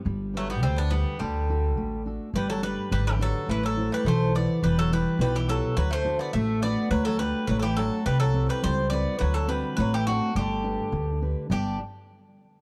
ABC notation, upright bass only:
X:1
M:2/4
L:1/8
Q:1/4=105
K:G
V:1 name="Upright bass" clef=bass
G,,,2 D,,2 | D,,2 A,,,2 | G,,,2 _A,,,2 | A,,,2 B,,,2 |
E,,,2 B,,,2 | D,,2 A,,,2 | D,,2 A,,,2 | C,,2 ^C,,2 |
D,,2 A,,,2 | G,,,2 D,,2 | G,,, z3 |]